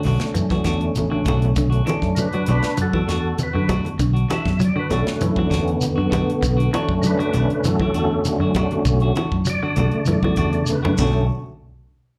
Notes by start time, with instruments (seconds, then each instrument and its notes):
Already playing: tonewheel organ D3 A3 C#4 D4
0.03 fingered electric bass B1, clean electric guitar A3 D4 F#4, open hi-hat, high conga, low conga, shekere
0.20 muted fingered electric bass stroke, snare, closed hi-hat
0.34 fingered electric bass F#2, clean electric guitar E3, closed hi-hat, low conga, shekere
0.50 clean electric guitar E3 D4 F#4, kick, snare
0.64 fingered electric bass E2, clean electric guitar A3 D4 F#4, kick, snare, closed hi-hat, shekere
0.81 closed hi-hat
0.95 fingered electric bass A1, closed hi-hat, high conga, shekere
1.10 clean electric guitar D3 D4 F#4
1.25 fingered electric bass B1, clean electric guitar A3 D4 F#4, kick, closed hi-hat, high conga, low conga, shekere
1.42 closed hi-hat, high conga
1.56 fingered electric bass B1, clean electric guitar D3, kick, closed hi-hat, shekere
1.70 clean electric guitar D4 F#4, closed hi-hat
1.86 tonewheel organ D3 A3 C#4, clean electric guitar E3 A3 D4, muted fingered electric bass stroke, closed hi-hat, high conga, shekere
2.02 fingered electric bass F#2, kick, snare
2.15 clean electric guitar F#3, tonewheel organ D4 A#4, closed hi-hat, shekere
2.19 tonewheel organ B4
2.33 clean electric guitar F#3 D4 F#4, closed hi-hat
2.46 fingered electric bass B1, clean electric guitar A3 D4 F#4, closed hi-hat, high conga, low conga, shekere
2.51 tonewheel organ D4 B4
2.62 muted fingered electric bass stroke, snare, closed hi-hat
2.77 fingered electric bass F#2, muted clean electric guitar stroke, closed hi-hat, shekere
2.82 tonewheel organ F#4 A4
2.93 clean electric guitar E3 D4 F#4, kick, high conga
3.07 fingered electric bass E2, clean electric guitar A3 D4 F#4, tonewheel organ F#4, snare, closed hi-hat, shekere
3.12 tonewheel organ A4
3.38 closed hi-hat, high conga, shekere
3.43 tonewheel organ B4
3.53 fingered electric bass F#2, clean electric guitar D3 D4 F#4
3.68 clean electric guitar A3 D4 F#4, kick, closed hi-hat, high conga, low conga, shekere
3.85 closed hi-hat, high conga
3.99 fingered electric bass B1, clean electric guitar D3, kick, closed hi-hat, shekere
4.13 clean electric guitar D4 F#4, closed hi-hat
4.29 clean electric guitar E3 D4 F#4, muted clean electric guitar stroke, muted fingered electric bass stroke, snare, closed hi-hat, high conga, shekere
4.33 tonewheel organ E5
4.45 fingered electric bass F#2, kick, snare, high conga
4.59 clean electric guitar F#3, closed hi-hat, shekere
4.64 tonewheel organ D5
4.76 clean electric guitar D3 D4 F#4, tonewheel organ B4
4.90 fingered electric bass B1, tonewheel organ D3 A3 C#4 A4, clean electric guitar A3 D4 F#4, snare, closed hi-hat, high conga, low conga, shekere
5.06 muted fingered electric bass stroke, snare, closed hi-hat
5.11 tonewheel organ F#4
5.21 fingered electric bass F#2, clean electric guitar E3, closed hi-hat, low conga, shekere
5.26 tonewheel organ E4
5.36 clean electric guitar E3 D4 F#4, kick, high conga
5.42 tonewheel organ D4
5.49 fingered electric bass E2, clean electric guitar A3 D4 F#4, kick, snare, closed hi-hat, shekere
5.56 tonewheel organ D3 B3
5.68 closed hi-hat
5.81 closed hi-hat, high conga, shekere
5.96 fingered electric bass F#2, clean electric guitar D3 D4 F#4
6.10 clean electric guitar A3 D4 F#4, kick, closed hi-hat, high conga, low conga, shekere
6.30 closed hi-hat
6.43 fingered electric bass B1, clean electric guitar D3, kick, closed hi-hat, shekere
6.57 clean electric guitar D4 F#4, closed hi-hat
6.73 tonewheel organ D3 A3 C#4, clean electric guitar E3 A3 D4 F#4, muted fingered electric bass stroke, closed hi-hat, high conga, shekere
6.89 fingered electric bass F#2, kick
7.02 clean electric guitar F#3, tonewheel organ D4 A#4, closed hi-hat, shekere
7.07 tonewheel organ B4
7.19 clean electric guitar D4 F#4, muted clean electric guitar stroke, closed hi-hat
7.33 fingered electric bass B1, clean electric guitar A3 D4 F#4, closed hi-hat, high conga, low conga, shekere
7.37 tonewheel organ D4 B4
7.50 muted fingered electric bass stroke, closed hi-hat
7.63 fingered electric bass F#2, clean electric guitar E3, tonewheel organ F#4 A4, closed hi-hat, low conga, shekere
7.80 clean electric guitar E3 D4 F#4, kick
7.93 fingered electric bass E2, clean electric guitar A3 D4 F#4, tonewheel organ F#4 A4, closed hi-hat, shekere
8.25 tonewheel organ D4 F#4, closed hi-hat, high conga, shekere
8.39 fingered electric bass F#2, clean electric guitar D3 D4 F#4
8.54 clean electric guitar A3 D4 F#4, tonewheel organ D4 F#4, kick, closed hi-hat, high conga, low conga, shekere
8.71 closed hi-hat, high conga
8.85 fingered electric bass B1, tonewheel organ F#4, muted clean electric guitar stroke, kick, closed hi-hat, shekere
9.00 clean electric guitar D4 F#4, closed hi-hat
9.16 clean electric guitar E3 A3 D4 F#4, muted fingered electric bass stroke, closed hi-hat, high conga, shekere
9.32 fingered electric bass F#2, kick
9.45 clean electric guitar F#3, closed hi-hat, shekere
9.50 tonewheel organ D5
9.63 clean electric guitar D3 D4 F#4
9.76 fingered electric bass B1, tonewheel organ C#3 D3 A3, clean electric guitar A3 D4 F#4, closed hi-hat, high conga, low conga, shekere
9.92 muted fingered electric bass stroke, closed hi-hat
10.06 fingered electric bass F#2, clean electric guitar E3, closed hi-hat, low conga, shekere
10.12 tonewheel organ D5
10.23 clean electric guitar E3 F#4, muted clean electric guitar stroke, kick, high conga
10.36 fingered electric bass E2, clean electric guitar D4 F#4, muted clean electric guitar stroke, kick, closed hi-hat, shekere
10.53 closed hi-hat
10.66 closed hi-hat, high conga, shekere
10.72 tonewheel organ B4
10.83 fingered electric bass F#2, clean electric guitar D3 D4 F#4, high conga
10.97 fingered electric bass B1, clean electric guitar B2 A3 D4 F#4, tonewheel organ D3 A3 C#4, kick, crash, low conga, shekere